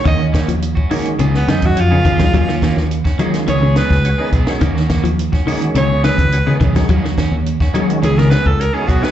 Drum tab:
HH |x-xxx-oxx-xxx-xx|x-x-x-xxx-x-x-x-|x-xxx-oxx-xxx-xx|x-x-x-xxx-x-x-x-|
SD |--o------oo----o|-ooo-o-o--oo---o|-oo--o----o----o|-oo--o---oo----o|
BD |o-o--o-----o--oo|o-o--o-----o--o-|o-o--o-----o--oo|o-o--o-----o--o-|